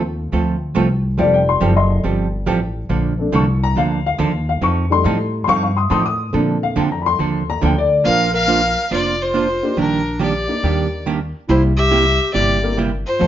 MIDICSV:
0, 0, Header, 1, 6, 480
1, 0, Start_track
1, 0, Key_signature, -2, "major"
1, 0, Tempo, 429492
1, 1320, Time_signature, 4, 2, 24, 8
1, 14833, End_track
2, 0, Start_track
2, 0, Title_t, "Fiddle"
2, 0, Program_c, 0, 110
2, 8993, Note_on_c, 0, 77, 107
2, 9299, Note_off_c, 0, 77, 0
2, 9329, Note_on_c, 0, 77, 115
2, 9919, Note_off_c, 0, 77, 0
2, 9978, Note_on_c, 0, 74, 96
2, 10304, Note_on_c, 0, 72, 84
2, 10321, Note_off_c, 0, 74, 0
2, 10930, Note_off_c, 0, 72, 0
2, 10948, Note_on_c, 0, 70, 87
2, 11382, Note_off_c, 0, 70, 0
2, 11425, Note_on_c, 0, 74, 77
2, 12328, Note_off_c, 0, 74, 0
2, 12842, Note_on_c, 0, 72, 83
2, 12988, Note_off_c, 0, 72, 0
2, 13149, Note_on_c, 0, 76, 115
2, 13747, Note_off_c, 0, 76, 0
2, 13784, Note_on_c, 0, 74, 93
2, 14237, Note_off_c, 0, 74, 0
2, 14594, Note_on_c, 0, 72, 125
2, 14833, Note_off_c, 0, 72, 0
2, 14833, End_track
3, 0, Start_track
3, 0, Title_t, "Upright piano"
3, 0, Program_c, 1, 0
3, 0, Note_on_c, 1, 57, 61
3, 0, Note_on_c, 1, 60, 51
3, 0, Note_on_c, 1, 65, 68
3, 1273, Note_off_c, 1, 57, 0
3, 1277, Note_off_c, 1, 60, 0
3, 1278, Note_off_c, 1, 65, 0
3, 1314, Note_on_c, 1, 55, 62
3, 1318, Note_on_c, 1, 57, 50
3, 1327, Note_on_c, 1, 65, 64
3, 1338, Note_on_c, 1, 74, 94
3, 1484, Note_off_c, 1, 74, 0
3, 1496, Note_on_c, 1, 79, 88
3, 1643, Note_off_c, 1, 79, 0
3, 1664, Note_on_c, 1, 84, 92
3, 1959, Note_off_c, 1, 84, 0
3, 1970, Note_on_c, 1, 75, 78
3, 1975, Note_on_c, 1, 84, 87
3, 2214, Note_off_c, 1, 75, 0
3, 2228, Note_off_c, 1, 84, 0
3, 3192, Note_off_c, 1, 55, 0
3, 3194, Note_off_c, 1, 57, 0
3, 3199, Note_off_c, 1, 65, 0
3, 3558, Note_on_c, 1, 57, 53
3, 3565, Note_on_c, 1, 60, 49
3, 3573, Note_on_c, 1, 62, 58
3, 3747, Note_on_c, 1, 85, 83
3, 3832, Note_off_c, 1, 57, 0
3, 3836, Note_off_c, 1, 60, 0
3, 3840, Note_off_c, 1, 62, 0
3, 4049, Note_off_c, 1, 85, 0
3, 4062, Note_on_c, 1, 82, 107
3, 4205, Note_off_c, 1, 82, 0
3, 4222, Note_on_c, 1, 77, 104
3, 4526, Note_off_c, 1, 77, 0
3, 4543, Note_on_c, 1, 77, 100
3, 5000, Note_off_c, 1, 77, 0
3, 5019, Note_on_c, 1, 77, 94
3, 5163, Note_off_c, 1, 77, 0
3, 5179, Note_on_c, 1, 85, 97
3, 5475, Note_on_c, 1, 55, 56
3, 5484, Note_on_c, 1, 57, 55
3, 5485, Note_off_c, 1, 85, 0
3, 5488, Note_on_c, 1, 63, 58
3, 5501, Note_on_c, 1, 84, 101
3, 5959, Note_off_c, 1, 84, 0
3, 6083, Note_on_c, 1, 84, 83
3, 6084, Note_off_c, 1, 55, 0
3, 6088, Note_off_c, 1, 57, 0
3, 6091, Note_off_c, 1, 63, 0
3, 6121, Note_off_c, 1, 84, 0
3, 6127, Note_on_c, 1, 77, 97
3, 6136, Note_on_c, 1, 85, 127
3, 6272, Note_off_c, 1, 77, 0
3, 6276, Note_off_c, 1, 85, 0
3, 6289, Note_on_c, 1, 77, 67
3, 6293, Note_on_c, 1, 85, 74
3, 6434, Note_off_c, 1, 77, 0
3, 6443, Note_off_c, 1, 85, 0
3, 6443, Note_on_c, 1, 84, 77
3, 6452, Note_on_c, 1, 87, 88
3, 6586, Note_off_c, 1, 84, 0
3, 6595, Note_off_c, 1, 87, 0
3, 6603, Note_on_c, 1, 84, 82
3, 6612, Note_on_c, 1, 87, 103
3, 6722, Note_on_c, 1, 86, 68
3, 6751, Note_off_c, 1, 84, 0
3, 6753, Note_off_c, 1, 87, 0
3, 6770, Note_on_c, 1, 87, 100
3, 6783, Note_off_c, 1, 86, 0
3, 7026, Note_off_c, 1, 87, 0
3, 7065, Note_on_c, 1, 57, 55
3, 7071, Note_on_c, 1, 60, 53
3, 7079, Note_on_c, 1, 62, 64
3, 7412, Note_on_c, 1, 77, 96
3, 7562, Note_off_c, 1, 77, 0
3, 7570, Note_on_c, 1, 79, 83
3, 7721, Note_off_c, 1, 79, 0
3, 7731, Note_on_c, 1, 82, 84
3, 7843, Note_on_c, 1, 83, 63
3, 7882, Note_off_c, 1, 82, 0
3, 7888, Note_off_c, 1, 83, 0
3, 7894, Note_on_c, 1, 84, 102
3, 8353, Note_off_c, 1, 84, 0
3, 8378, Note_on_c, 1, 82, 102
3, 8525, Note_off_c, 1, 82, 0
3, 8545, Note_on_c, 1, 79, 99
3, 8689, Note_off_c, 1, 79, 0
3, 8697, Note_on_c, 1, 74, 97
3, 8949, Note_off_c, 1, 57, 0
3, 8950, Note_off_c, 1, 74, 0
3, 8952, Note_off_c, 1, 60, 0
3, 8956, Note_off_c, 1, 62, 0
3, 10759, Note_on_c, 1, 58, 70
3, 10764, Note_on_c, 1, 62, 72
3, 10769, Note_on_c, 1, 63, 57
3, 10772, Note_on_c, 1, 67, 71
3, 10777, Note_on_c, 1, 70, 85
3, 10902, Note_off_c, 1, 58, 0
3, 10905, Note_off_c, 1, 62, 0
3, 10907, Note_off_c, 1, 63, 0
3, 10909, Note_off_c, 1, 67, 0
3, 10911, Note_off_c, 1, 70, 0
3, 11712, Note_on_c, 1, 58, 64
3, 11713, Note_on_c, 1, 62, 62
3, 11722, Note_on_c, 1, 63, 61
3, 11724, Note_on_c, 1, 67, 62
3, 11730, Note_on_c, 1, 70, 70
3, 12323, Note_off_c, 1, 58, 0
3, 12323, Note_off_c, 1, 62, 0
3, 12328, Note_off_c, 1, 63, 0
3, 12329, Note_off_c, 1, 67, 0
3, 12332, Note_off_c, 1, 70, 0
3, 14110, Note_on_c, 1, 58, 77
3, 14114, Note_on_c, 1, 60, 79
3, 14123, Note_on_c, 1, 64, 81
3, 14123, Note_on_c, 1, 67, 75
3, 14127, Note_on_c, 1, 70, 91
3, 14257, Note_off_c, 1, 58, 0
3, 14259, Note_off_c, 1, 60, 0
3, 14263, Note_off_c, 1, 64, 0
3, 14263, Note_off_c, 1, 67, 0
3, 14265, Note_off_c, 1, 70, 0
3, 14756, Note_on_c, 1, 57, 59
3, 14762, Note_on_c, 1, 60, 46
3, 14768, Note_on_c, 1, 65, 54
3, 14772, Note_on_c, 1, 69, 49
3, 14772, Note_on_c, 1, 72, 62
3, 14833, Note_off_c, 1, 57, 0
3, 14833, Note_off_c, 1, 60, 0
3, 14833, Note_off_c, 1, 65, 0
3, 14833, Note_off_c, 1, 69, 0
3, 14833, Note_off_c, 1, 72, 0
3, 14833, End_track
4, 0, Start_track
4, 0, Title_t, "Clarinet"
4, 0, Program_c, 2, 71
4, 8998, Note_on_c, 2, 70, 92
4, 9302, Note_off_c, 2, 70, 0
4, 9318, Note_on_c, 2, 70, 93
4, 9913, Note_off_c, 2, 70, 0
4, 9976, Note_on_c, 2, 65, 75
4, 10297, Note_off_c, 2, 65, 0
4, 10297, Note_on_c, 2, 65, 88
4, 10927, Note_off_c, 2, 65, 0
4, 10941, Note_on_c, 2, 62, 81
4, 11378, Note_off_c, 2, 62, 0
4, 11421, Note_on_c, 2, 67, 70
4, 12326, Note_off_c, 2, 67, 0
4, 12843, Note_on_c, 2, 64, 83
4, 12988, Note_off_c, 2, 64, 0
4, 13157, Note_on_c, 2, 67, 105
4, 13751, Note_off_c, 2, 67, 0
4, 13787, Note_on_c, 2, 67, 71
4, 14239, Note_off_c, 2, 67, 0
4, 14601, Note_on_c, 2, 65, 94
4, 14833, Note_off_c, 2, 65, 0
4, 14833, End_track
5, 0, Start_track
5, 0, Title_t, "Hollow-body jazz guitar"
5, 0, Program_c, 3, 26
5, 361, Note_on_c, 3, 53, 57
5, 364, Note_on_c, 3, 57, 58
5, 371, Note_on_c, 3, 60, 62
5, 372, Note_on_c, 3, 65, 62
5, 373, Note_on_c, 3, 69, 67
5, 616, Note_off_c, 3, 53, 0
5, 617, Note_off_c, 3, 57, 0
5, 621, Note_off_c, 3, 60, 0
5, 621, Note_off_c, 3, 65, 0
5, 622, Note_off_c, 3, 69, 0
5, 836, Note_on_c, 3, 53, 84
5, 837, Note_on_c, 3, 57, 81
5, 844, Note_on_c, 3, 60, 83
5, 846, Note_on_c, 3, 69, 87
5, 847, Note_on_c, 3, 65, 86
5, 973, Note_off_c, 3, 53, 0
5, 974, Note_off_c, 3, 57, 0
5, 977, Note_off_c, 3, 60, 0
5, 978, Note_off_c, 3, 69, 0
5, 979, Note_off_c, 3, 65, 0
5, 1314, Note_on_c, 3, 53, 58
5, 1322, Note_on_c, 3, 55, 60
5, 1325, Note_on_c, 3, 60, 61
5, 1326, Note_on_c, 3, 67, 62
5, 1327, Note_on_c, 3, 69, 68
5, 1572, Note_off_c, 3, 53, 0
5, 1577, Note_off_c, 3, 55, 0
5, 1578, Note_off_c, 3, 60, 0
5, 1579, Note_off_c, 3, 67, 0
5, 1579, Note_off_c, 3, 69, 0
5, 1793, Note_on_c, 3, 53, 81
5, 1796, Note_on_c, 3, 55, 83
5, 1802, Note_on_c, 3, 60, 78
5, 1804, Note_on_c, 3, 67, 81
5, 1808, Note_on_c, 3, 69, 83
5, 1932, Note_off_c, 3, 53, 0
5, 1933, Note_off_c, 3, 55, 0
5, 1936, Note_off_c, 3, 60, 0
5, 1937, Note_off_c, 3, 67, 0
5, 1939, Note_off_c, 3, 69, 0
5, 2275, Note_on_c, 3, 53, 57
5, 2279, Note_on_c, 3, 55, 57
5, 2282, Note_on_c, 3, 60, 62
5, 2284, Note_on_c, 3, 67, 58
5, 2289, Note_on_c, 3, 69, 58
5, 2533, Note_off_c, 3, 53, 0
5, 2535, Note_off_c, 3, 55, 0
5, 2537, Note_off_c, 3, 60, 0
5, 2538, Note_off_c, 3, 67, 0
5, 2540, Note_off_c, 3, 69, 0
5, 2753, Note_on_c, 3, 53, 78
5, 2756, Note_on_c, 3, 55, 80
5, 2759, Note_on_c, 3, 67, 80
5, 2761, Note_on_c, 3, 60, 90
5, 2765, Note_on_c, 3, 69, 93
5, 2892, Note_off_c, 3, 53, 0
5, 2893, Note_off_c, 3, 55, 0
5, 2895, Note_off_c, 3, 67, 0
5, 2896, Note_off_c, 3, 60, 0
5, 2898, Note_off_c, 3, 69, 0
5, 3234, Note_on_c, 3, 50, 58
5, 3236, Note_on_c, 3, 53, 61
5, 3240, Note_on_c, 3, 58, 58
5, 3243, Note_on_c, 3, 62, 66
5, 3244, Note_on_c, 3, 69, 59
5, 3493, Note_off_c, 3, 50, 0
5, 3494, Note_off_c, 3, 53, 0
5, 3496, Note_off_c, 3, 58, 0
5, 3498, Note_off_c, 3, 62, 0
5, 3498, Note_off_c, 3, 69, 0
5, 3715, Note_on_c, 3, 50, 81
5, 3716, Note_on_c, 3, 53, 76
5, 3723, Note_on_c, 3, 58, 93
5, 3723, Note_on_c, 3, 62, 84
5, 3728, Note_on_c, 3, 69, 88
5, 3853, Note_off_c, 3, 50, 0
5, 3853, Note_off_c, 3, 53, 0
5, 3857, Note_off_c, 3, 58, 0
5, 3857, Note_off_c, 3, 62, 0
5, 3860, Note_off_c, 3, 69, 0
5, 4202, Note_on_c, 3, 50, 54
5, 4209, Note_on_c, 3, 53, 62
5, 4210, Note_on_c, 3, 58, 61
5, 4212, Note_on_c, 3, 62, 62
5, 4218, Note_on_c, 3, 69, 69
5, 4457, Note_off_c, 3, 50, 0
5, 4461, Note_off_c, 3, 53, 0
5, 4461, Note_off_c, 3, 58, 0
5, 4462, Note_off_c, 3, 62, 0
5, 4465, Note_off_c, 3, 69, 0
5, 4676, Note_on_c, 3, 50, 81
5, 4680, Note_on_c, 3, 53, 69
5, 4684, Note_on_c, 3, 58, 77
5, 4686, Note_on_c, 3, 62, 94
5, 4691, Note_on_c, 3, 69, 81
5, 4814, Note_off_c, 3, 50, 0
5, 4816, Note_off_c, 3, 53, 0
5, 4818, Note_off_c, 3, 58, 0
5, 4819, Note_off_c, 3, 62, 0
5, 4821, Note_off_c, 3, 69, 0
5, 5157, Note_on_c, 3, 53, 55
5, 5158, Note_on_c, 3, 60, 62
5, 5164, Note_on_c, 3, 63, 64
5, 5170, Note_on_c, 3, 69, 62
5, 5415, Note_off_c, 3, 53, 0
5, 5415, Note_off_c, 3, 60, 0
5, 5418, Note_off_c, 3, 63, 0
5, 5421, Note_off_c, 3, 69, 0
5, 5635, Note_on_c, 3, 53, 74
5, 5645, Note_on_c, 3, 60, 71
5, 5648, Note_on_c, 3, 63, 90
5, 5652, Note_on_c, 3, 69, 96
5, 5774, Note_off_c, 3, 53, 0
5, 5778, Note_off_c, 3, 60, 0
5, 5780, Note_off_c, 3, 63, 0
5, 5782, Note_off_c, 3, 69, 0
5, 6117, Note_on_c, 3, 53, 57
5, 6124, Note_on_c, 3, 60, 70
5, 6130, Note_on_c, 3, 63, 60
5, 6133, Note_on_c, 3, 69, 64
5, 6375, Note_off_c, 3, 53, 0
5, 6378, Note_off_c, 3, 60, 0
5, 6381, Note_off_c, 3, 63, 0
5, 6383, Note_off_c, 3, 69, 0
5, 6594, Note_on_c, 3, 53, 85
5, 6602, Note_on_c, 3, 60, 79
5, 6607, Note_on_c, 3, 63, 83
5, 6611, Note_on_c, 3, 69, 82
5, 6733, Note_off_c, 3, 53, 0
5, 6737, Note_off_c, 3, 60, 0
5, 6739, Note_off_c, 3, 63, 0
5, 6741, Note_off_c, 3, 69, 0
5, 7073, Note_on_c, 3, 50, 59
5, 7080, Note_on_c, 3, 53, 64
5, 7084, Note_on_c, 3, 58, 56
5, 7085, Note_on_c, 3, 62, 62
5, 7086, Note_on_c, 3, 69, 65
5, 7333, Note_off_c, 3, 50, 0
5, 7337, Note_off_c, 3, 53, 0
5, 7338, Note_off_c, 3, 58, 0
5, 7339, Note_off_c, 3, 62, 0
5, 7340, Note_off_c, 3, 69, 0
5, 7553, Note_on_c, 3, 50, 84
5, 7555, Note_on_c, 3, 53, 75
5, 7559, Note_on_c, 3, 58, 79
5, 7561, Note_on_c, 3, 62, 94
5, 7566, Note_on_c, 3, 69, 90
5, 7693, Note_off_c, 3, 50, 0
5, 7694, Note_off_c, 3, 53, 0
5, 7696, Note_off_c, 3, 58, 0
5, 7697, Note_off_c, 3, 62, 0
5, 7699, Note_off_c, 3, 69, 0
5, 8033, Note_on_c, 3, 50, 62
5, 8037, Note_on_c, 3, 53, 57
5, 8041, Note_on_c, 3, 58, 56
5, 8043, Note_on_c, 3, 62, 62
5, 8050, Note_on_c, 3, 69, 69
5, 8293, Note_off_c, 3, 50, 0
5, 8295, Note_off_c, 3, 53, 0
5, 8297, Note_off_c, 3, 58, 0
5, 8298, Note_off_c, 3, 62, 0
5, 8302, Note_off_c, 3, 69, 0
5, 8510, Note_on_c, 3, 50, 74
5, 8514, Note_on_c, 3, 53, 78
5, 8517, Note_on_c, 3, 58, 82
5, 8521, Note_on_c, 3, 62, 83
5, 8526, Note_on_c, 3, 69, 85
5, 8651, Note_off_c, 3, 50, 0
5, 8653, Note_off_c, 3, 53, 0
5, 8655, Note_off_c, 3, 58, 0
5, 8657, Note_off_c, 3, 62, 0
5, 8659, Note_off_c, 3, 69, 0
5, 8985, Note_on_c, 3, 58, 58
5, 8993, Note_on_c, 3, 62, 65
5, 9000, Note_on_c, 3, 65, 54
5, 9003, Note_on_c, 3, 72, 67
5, 9249, Note_off_c, 3, 58, 0
5, 9253, Note_off_c, 3, 62, 0
5, 9257, Note_off_c, 3, 65, 0
5, 9258, Note_off_c, 3, 72, 0
5, 9472, Note_on_c, 3, 58, 69
5, 9477, Note_on_c, 3, 62, 77
5, 9481, Note_on_c, 3, 65, 80
5, 9487, Note_on_c, 3, 72, 80
5, 9612, Note_off_c, 3, 58, 0
5, 9615, Note_off_c, 3, 62, 0
5, 9617, Note_off_c, 3, 65, 0
5, 9620, Note_off_c, 3, 72, 0
5, 9958, Note_on_c, 3, 58, 55
5, 9963, Note_on_c, 3, 62, 52
5, 9970, Note_on_c, 3, 65, 66
5, 9972, Note_on_c, 3, 72, 71
5, 10216, Note_off_c, 3, 58, 0
5, 10218, Note_off_c, 3, 62, 0
5, 10222, Note_off_c, 3, 65, 0
5, 10222, Note_off_c, 3, 72, 0
5, 10436, Note_on_c, 3, 58, 78
5, 10443, Note_on_c, 3, 62, 77
5, 10452, Note_on_c, 3, 65, 80
5, 10453, Note_on_c, 3, 72, 78
5, 10574, Note_off_c, 3, 58, 0
5, 10578, Note_off_c, 3, 62, 0
5, 10582, Note_off_c, 3, 65, 0
5, 10583, Note_off_c, 3, 72, 0
5, 10917, Note_on_c, 3, 51, 63
5, 10921, Note_on_c, 3, 55, 51
5, 10923, Note_on_c, 3, 58, 54
5, 10927, Note_on_c, 3, 62, 63
5, 10928, Note_on_c, 3, 67, 64
5, 11175, Note_off_c, 3, 51, 0
5, 11177, Note_off_c, 3, 55, 0
5, 11178, Note_off_c, 3, 58, 0
5, 11180, Note_off_c, 3, 62, 0
5, 11181, Note_off_c, 3, 67, 0
5, 11392, Note_on_c, 3, 51, 72
5, 11394, Note_on_c, 3, 55, 72
5, 11402, Note_on_c, 3, 58, 82
5, 11402, Note_on_c, 3, 62, 82
5, 11409, Note_on_c, 3, 67, 83
5, 11532, Note_off_c, 3, 51, 0
5, 11533, Note_off_c, 3, 55, 0
5, 11537, Note_off_c, 3, 58, 0
5, 11537, Note_off_c, 3, 62, 0
5, 11540, Note_off_c, 3, 67, 0
5, 11885, Note_on_c, 3, 51, 60
5, 11890, Note_on_c, 3, 55, 66
5, 11893, Note_on_c, 3, 58, 64
5, 11895, Note_on_c, 3, 62, 60
5, 11898, Note_on_c, 3, 67, 62
5, 12139, Note_off_c, 3, 51, 0
5, 12141, Note_off_c, 3, 55, 0
5, 12143, Note_off_c, 3, 58, 0
5, 12144, Note_off_c, 3, 62, 0
5, 12145, Note_off_c, 3, 67, 0
5, 12361, Note_on_c, 3, 51, 74
5, 12367, Note_on_c, 3, 55, 72
5, 12369, Note_on_c, 3, 58, 81
5, 12372, Note_on_c, 3, 62, 75
5, 12372, Note_on_c, 3, 67, 86
5, 12496, Note_off_c, 3, 51, 0
5, 12499, Note_off_c, 3, 55, 0
5, 12500, Note_off_c, 3, 58, 0
5, 12502, Note_off_c, 3, 62, 0
5, 12502, Note_off_c, 3, 67, 0
5, 12837, Note_on_c, 3, 48, 54
5, 12845, Note_on_c, 3, 55, 55
5, 12845, Note_on_c, 3, 58, 57
5, 12847, Note_on_c, 3, 64, 67
5, 12851, Note_on_c, 3, 67, 54
5, 13094, Note_off_c, 3, 48, 0
5, 13098, Note_off_c, 3, 55, 0
5, 13099, Note_off_c, 3, 58, 0
5, 13099, Note_off_c, 3, 64, 0
5, 13102, Note_off_c, 3, 67, 0
5, 13308, Note_on_c, 3, 48, 75
5, 13314, Note_on_c, 3, 55, 70
5, 13317, Note_on_c, 3, 64, 80
5, 13318, Note_on_c, 3, 58, 87
5, 13324, Note_on_c, 3, 67, 91
5, 13449, Note_off_c, 3, 48, 0
5, 13452, Note_off_c, 3, 55, 0
5, 13454, Note_off_c, 3, 58, 0
5, 13454, Note_off_c, 3, 64, 0
5, 13457, Note_off_c, 3, 67, 0
5, 13791, Note_on_c, 3, 48, 57
5, 13793, Note_on_c, 3, 55, 65
5, 13798, Note_on_c, 3, 58, 65
5, 13800, Note_on_c, 3, 64, 66
5, 13804, Note_on_c, 3, 67, 73
5, 14051, Note_off_c, 3, 48, 0
5, 14052, Note_off_c, 3, 55, 0
5, 14054, Note_off_c, 3, 58, 0
5, 14055, Note_off_c, 3, 64, 0
5, 14058, Note_off_c, 3, 67, 0
5, 14276, Note_on_c, 3, 48, 74
5, 14279, Note_on_c, 3, 55, 77
5, 14284, Note_on_c, 3, 58, 74
5, 14289, Note_on_c, 3, 64, 87
5, 14291, Note_on_c, 3, 67, 81
5, 14413, Note_off_c, 3, 48, 0
5, 14414, Note_off_c, 3, 55, 0
5, 14417, Note_off_c, 3, 58, 0
5, 14419, Note_off_c, 3, 64, 0
5, 14420, Note_off_c, 3, 67, 0
5, 14745, Note_on_c, 3, 53, 59
5, 14750, Note_on_c, 3, 57, 56
5, 14757, Note_on_c, 3, 60, 50
5, 14757, Note_on_c, 3, 65, 60
5, 14762, Note_on_c, 3, 69, 70
5, 14833, Note_off_c, 3, 53, 0
5, 14833, Note_off_c, 3, 57, 0
5, 14833, Note_off_c, 3, 60, 0
5, 14833, Note_off_c, 3, 65, 0
5, 14833, Note_off_c, 3, 69, 0
5, 14833, End_track
6, 0, Start_track
6, 0, Title_t, "Upright bass"
6, 0, Program_c, 4, 32
6, 0, Note_on_c, 4, 39, 90
6, 344, Note_off_c, 4, 39, 0
6, 364, Note_on_c, 4, 38, 83
6, 827, Note_off_c, 4, 38, 0
6, 842, Note_on_c, 4, 36, 90
6, 1306, Note_off_c, 4, 36, 0
6, 1324, Note_on_c, 4, 29, 86
6, 1787, Note_off_c, 4, 29, 0
6, 1803, Note_on_c, 4, 30, 85
6, 2267, Note_off_c, 4, 30, 0
6, 2283, Note_on_c, 4, 31, 67
6, 2747, Note_off_c, 4, 31, 0
6, 2759, Note_on_c, 4, 33, 93
6, 3225, Note_off_c, 4, 33, 0
6, 3233, Note_on_c, 4, 34, 88
6, 3702, Note_off_c, 4, 34, 0
6, 3717, Note_on_c, 4, 36, 90
6, 4184, Note_off_c, 4, 36, 0
6, 4194, Note_on_c, 4, 38, 72
6, 4663, Note_off_c, 4, 38, 0
6, 4678, Note_on_c, 4, 39, 99
6, 5145, Note_off_c, 4, 39, 0
6, 5160, Note_on_c, 4, 41, 87
6, 5626, Note_off_c, 4, 41, 0
6, 5644, Note_on_c, 4, 45, 97
6, 6108, Note_off_c, 4, 45, 0
6, 6121, Note_on_c, 4, 43, 77
6, 6587, Note_off_c, 4, 43, 0
6, 6603, Note_on_c, 4, 45, 94
6, 7068, Note_off_c, 4, 45, 0
6, 7085, Note_on_c, 4, 46, 98
6, 7549, Note_off_c, 4, 46, 0
6, 7558, Note_on_c, 4, 41, 90
6, 8025, Note_off_c, 4, 41, 0
6, 8040, Note_on_c, 4, 39, 80
6, 8506, Note_off_c, 4, 39, 0
6, 8523, Note_on_c, 4, 38, 93
6, 8988, Note_off_c, 4, 38, 0
6, 9007, Note_on_c, 4, 34, 91
6, 9773, Note_off_c, 4, 34, 0
6, 9960, Note_on_c, 4, 29, 65
6, 10728, Note_off_c, 4, 29, 0
6, 10918, Note_on_c, 4, 34, 84
6, 11687, Note_off_c, 4, 34, 0
6, 11881, Note_on_c, 4, 39, 79
6, 12648, Note_off_c, 4, 39, 0
6, 12843, Note_on_c, 4, 36, 92
6, 13610, Note_off_c, 4, 36, 0
6, 13799, Note_on_c, 4, 31, 79
6, 14567, Note_off_c, 4, 31, 0
6, 14762, Note_on_c, 4, 41, 99
6, 14833, Note_off_c, 4, 41, 0
6, 14833, End_track
0, 0, End_of_file